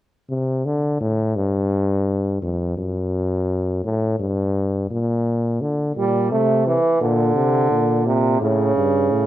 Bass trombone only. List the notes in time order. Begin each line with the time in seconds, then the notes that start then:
0.30 C3
0.65 D3
1.01 A2
1.36 G2
2.42 F2
2.78 F#2
3.84 A2
4.19 G2
4.91 A#2
5.61 D3
5.96 A#2
6.32 C3
7.01 A#2
7.36 C3
7.71 A#2
8.41 A2
8.76 G2
9.12 A2